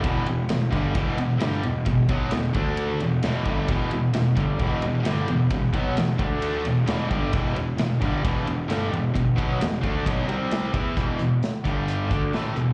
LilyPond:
<<
  \new Staff \with { instrumentName = "Distorted electric guitar" } { \clef bass \time 4/4 \key e \minor \tempo 4 = 132 <e, b, e>8 <e, b,>8 <e, b,>8 <g, d g>8 <e, b, e>8 <e, b,>8 <g, d g>8 <e, b,>8 | <e, b,>8 <b, fis b>8 <e, b,>8 <d a d'>4 <e, b,>8 <e, b, e>8 <g, d g>8 | <e, b, e>8 <e, b,>8 <e, b,>8 <g, d g>8 <e, b, e>8 <e, b,>8 <g, d g>8 <e, b,>8 | <e, b,>8 <b, fis b>8 <e, b,>8 <d a d'>4 <e, b,>8 <e, b, e>8 <g, d g>8 |
<e, b, e>8 <e, b,>8 <e, b,>8 <g, d g>8 <e, b, e>8 <e, b,>8 <g, d g>8 <e, b,>8 | <e, b,>8 <b, fis b>8 <e, b,>8 <d a d'>8 <b, fis b>8 <c g c'>4 <e b e'>8 | <e, b, e>8 <e, b,>8 r8 <g, d g>4 <d a d'>8 <a, e a>8 <e, b,>8 | }
  \new Staff \with { instrumentName = "Overdriven electric guitar" } { \clef bass \time 4/4 \key e \minor <e, b, e>8 <e, b,>8 <e, b,>8 <g, d g>8 <e, b, e>8 <e, b,>8 <g, d g>8 <e, b,>8 | <e, b,>8 <b, fis b>8 <e, b,>8 <d a d'>4 <e, b,>8 <e, b, e>8 <g, d g>8 | <e, b, e>8 <e, b,>8 <e, b,>8 <g, d g>8 <e, b, e>8 <e, b,>8 <g, d g>8 <e, b,>8 | <e, b,>8 <b, fis b>8 <e, b,>8 <d a d'>4 <e, b,>8 <e, b, e>8 <g, d g>8 |
<e, b, e>8 <e, b,>8 <e, b,>8 <g, d g>8 <e, b, e>8 <e, b,>8 <g, d g>8 <e, b,>8 | <e, b,>8 <b, fis b>8 <e, b,>8 <d a d'>8 <b, fis b>8 <c g c'>4 <e b e'>8 | <e, b, e>8 <e, b,>8 r8 <g, d g>4 <d a d'>8 <a, e a>8 <e, b,>8 | }
  \new Staff \with { instrumentName = "Picked electric bass" } { \clef bass \time 4/4 \key e \minor e,,8 e,,8 e,,8 g,,8 e,,8 e,,8 g,,8 e,,8 | e,,8 b,,8 e,,8 d,4 e,,8 e,,8 g,,8 | e,,8 e,,8 e,,8 g,,8 e,,8 e,,8 g,,8 e,,8 | e,,8 b,,8 e,,8 d,4 e,,8 e,,8 g,,8 |
e,,8 e,,8 e,,8 g,,8 e,,8 e,,8 g,,8 e,,8 | e,,8 b,,8 e,,8 d,8 b,,8 c,4 e,8 | e,,8 e,,8 r8 g,,4 d,8 a,,8 e,,8 | }
  \new DrumStaff \with { instrumentName = "Drums" } \drummode { \time 4/4 <bd cymr>8 cymr8 <cymr sn>8 <bd cymr sn>8 <bd cymr>8 cymr8 <cymr sn>8 cymr8 | <bd cymr>8 <bd cymr>8 <cymr sn>8 <bd cymr>8 cymr8 cymr8 <cymr sn>8 <bd cymr>8 | <bd cymr>8 cymr8 <cymr sn>8 <bd cymr sn>8 <bd cymr>8 cymr8 <cymr sn>8 cymr8 | <bd cymr>8 <bd cymr>8 <cymr sn>8 <bd cymr>8 cymr8 cymr8 <cymr sn>8 <bd cymr>8 |
<bd cymr>8 cymr8 <cymr sn>8 <bd cymr sn>8 <bd cymr>8 cymr8 <cymr sn>8 cymr8 | <bd cymr>8 <bd cymr>8 <cymr sn>8 <bd cymr>8 <bd cymr>8 cymr8 <cymr sn>8 <bd cymr>8 | <hh bd>8 hh8 <hh sn>8 <hh bd>8 hh8 <hh bd>8 <hh sn>8 hh8 | }
>>